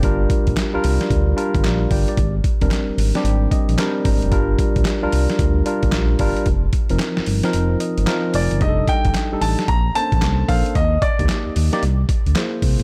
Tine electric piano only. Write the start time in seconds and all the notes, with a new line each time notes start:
Already playing: D5 G5
0.03 G3 D4 F4 A#4
0.74 G3 D4 F4 A#4
1.36 G3 D4 F4 A#4
1.65 F5 A#5
1.91 D5 G5
2.09 G4 D5
2.61 G3 C4 D4 A#4
3.15 G3 C4 D4 G4
3.51 D#5
3.78 G3 C4 D4 A#4 G5
4.05 A#5
4.31 G3 D4 F4 A#4
5.02 G3 D4 F4 A#4
5.66 G3 D4 F4 A#4
6.20 G3 D4 F4 A#4
6.90 F3 C4 D#4 A#4
7.44 F3 C4 D#4 A#4
7.80 D#5
8.07 F3 C4 D#4 A#4 F5
8.35 G#5
8.61 G3 D4 D#4 G#4
8.69 A4
9.32 G3 D4 D#4 A4
9.95 A#3 C#4 A4 C5
10.02 D4
10.48 A#3 D4 A4 C5
11.19 A#3 D#4 G4 D5
11.73 A#3 D#4 G4 D5
12.36 A#3 E4 G#4 C5